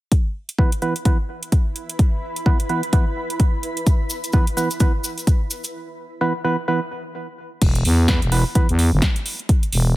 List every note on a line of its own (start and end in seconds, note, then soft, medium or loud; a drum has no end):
0.12 5.74 E4 medium
0.12 kick loud
0.12 closed hi-hat medium
0.49 5.74 B4 medium
0.49 closed hi-hat soft
0.58 0.70 E3 medium
0.58 0.70 B3 medium
0.58 0.70 B4 medium
0.58 kick medium
0.72 closed hi-hat medium
0.82 0.94 E3 medium
0.82 0.94 B3 medium
0.82 0.94 B4 medium
0.82 closed hi-hat soft
0.96 5.74 B5 medium
0.96 closed hi-hat medium
1.05 1.17 E3 medium
1.05 1.17 B3 medium
1.05 1.17 B4 medium
1.05 kick loud
1.05 closed hi-hat medium
1.43 closed hi-hat soft
1.52 kick medium
1.52 closed hi-hat medium
1.76 closed hi-hat medium
1.89 closed hi-hat medium
1.99 kick loud
1.99 closed hi-hat medium
2.36 closed hi-hat soft
2.46 2.58 E3 medium
2.46 2.58 B3 medium
2.46 2.58 B4 medium
2.46 kick loud
2.60 closed hi-hat medium
2.69 2.81 E3 medium
2.69 2.81 B3 medium
2.69 2.81 B4 medium
2.69 closed hi-hat soft
2.83 closed hi-hat soft
2.93 3.05 E3 medium
2.93 3.05 B3 medium
2.93 3.05 B4 medium
2.93 kick loud
2.93 closed hi-hat medium
3.30 closed hi-hat medium
3.40 kick loud
3.40 closed hi-hat medium
3.63 closed hi-hat medium
3.77 closed hi-hat soft
3.87 kick loud
3.87 closed hi-hat medium
3.87 cabasa soft
4.10 cabasa medium
4.24 closed hi-hat soft
4.24 cabasa medium
4.33 4.45 E3 medium
4.33 4.45 B3 medium
4.33 4.45 B4 medium
4.33 kick loud
4.33 cabasa soft
4.47 closed hi-hat medium
4.57 4.69 E3 medium
4.57 4.69 B3 medium
4.57 4.69 B4 medium
4.57 closed hi-hat soft
4.57 cabasa medium
4.71 closed hi-hat soft
4.71 cabasa medium
4.80 4.92 E3 medium
4.80 4.92 B3 medium
4.80 4.92 B4 medium
4.80 kick loud
4.80 closed hi-hat medium
4.80 cabasa soft
5.04 cabasa medium
5.18 closed hi-hat soft
5.18 cabasa medium
5.27 kick loud
5.27 closed hi-hat medium
5.27 cabasa soft
5.51 closed hi-hat medium
5.51 cabasa medium
5.64 closed hi-hat soft
5.64 cabasa soft
6.21 6.33 E3 medium
6.21 6.33 B3 medium
6.21 6.33 B4 medium
6.44 6.56 E3 medium
6.44 6.56 B3 medium
6.44 6.56 B4 medium
6.68 6.80 E3 medium
6.68 6.80 B3 medium
6.68 6.80 B4 medium
7.62 7.84 E1 medium
7.62 kick loud
7.62 closed hi-hat medium
7.62 crash medium
7.75 closed hi-hat medium
7.85 8.20 E2 medium
7.85 open hi-hat loud
8.08 8.20 E3 medium
8.08 8.20 B3 medium
8.08 8.20 B4 medium
8.08 kick loud
8.08 snare loud
8.08 closed hi-hat medium
8.22 8.44 E1 medium
8.22 closed hi-hat soft
8.32 8.44 E3 medium
8.32 8.44 B3 medium
8.32 8.44 B4 medium
8.32 open hi-hat medium
8.55 8.67 E3 medium
8.55 8.67 B3 medium
8.55 8.67 B4 medium
8.55 kick loud
8.55 closed hi-hat medium
8.69 8.90 E2 medium
8.69 closed hi-hat medium
8.79 open hi-hat loud
8.93 9.01 G1 loud
9.02 kick loud
9.02 snare loud
9.02 closed hi-hat medium
9.16 closed hi-hat medium
9.26 open hi-hat medium
9.39 closed hi-hat soft
9.49 kick loud
9.49 closed hi-hat medium
9.63 closed hi-hat medium
9.73 9.95 E1 medium
9.73 open hi-hat loud